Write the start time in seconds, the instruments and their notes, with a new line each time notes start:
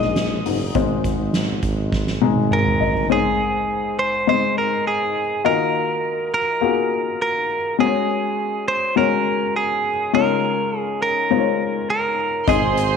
Already playing: tuba A#1, upright piano G#2 G#3 D#4 C5 D5 D#5, clean electric guitar D#5
0.02 snare
0.16 snare, closed hi-hat
0.46 tuba F#1, upright piano G#2, open hi-hat
0.75 tuba G#1, upright piano G#3 D#4 C5, kick, closed hi-hat
1.04 kick, closed hi-hat
1.19 tuba G#1
1.34 snare, closed hi-hat
1.63 tuba G#1, kick, closed hi-hat
1.92 kick, snare
2.07 snare
2.21 tuba G#1, upright piano G#3 D#4 G#4 A#5, high tom
2.36 high tom
2.51 clean electric guitar A#4, upright piano G#5, mid tom
2.66 mid tom
2.80 upright piano D#5, floor tom
2.95 floor tom
3.10 upright piano G#2 G#3 C4 D#4 C5, clean electric guitar G#4
3.99 clean electric guitar C5
4.27 upright piano G#3 C4 D#4 D#5, clean electric guitar C5
4.58 clean electric guitar A#4
4.87 clean electric guitar G#4
5.44 upright piano D#3 A#3 F4 F#4 D#5, clean electric guitar A#4
6.34 clean electric guitar A#4
6.61 upright piano A#3 F4 F#4 G#4
7.22 clean electric guitar A#4
7.79 upright piano G#3 C#4 F#4 C5, clean electric guitar G#4
7.85 upright piano C#5
8.68 clean electric guitar C5
8.96 upright piano G#3 C#4 F#4 C#5, clean electric guitar A#4
9.56 clean electric guitar G#4
10.13 upright piano C#3 G#3 D#4 F4 C#5, clean electric guitar A#4
10.79 clean electric guitar G#4
11.02 clean electric guitar A#4
11.31 upright piano G#3 D#4 F4 C5
11.37 upright piano C#5
11.90 clean electric guitar A#4
12.47 tuba G#1, upright piano G#2 C4 D#4 G#4 D#5, clean electric guitar G#4, violin section C5 C6, kick, closed hi-hat
12.77 closed hi-hat